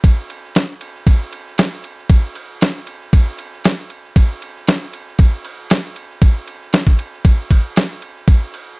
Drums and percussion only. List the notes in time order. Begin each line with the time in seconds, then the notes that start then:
0.04 kick, ride
0.30 ride
0.55 snare, ride
0.81 ride
1.07 kick, ride
1.33 ride
1.58 snare, ride
1.84 ride
2.09 kick, ride
2.35 ride
2.61 snare, ride
2.87 ride
3.13 kick, ride
3.39 ride
3.64 snare, ride
3.90 ride
4.16 kick, ride
4.42 ride
4.67 snare, ride
4.93 ride
5.19 kick, ride
5.45 ride
5.70 snare, ride
5.96 ride
6.22 kick, ride
6.48 ride
6.73 snare, ride
6.87 kick
6.99 ride
7.25 kick, ride
7.51 kick, ride
7.76 snare, ride
8.02 ride
8.28 kick, ride
8.54 ride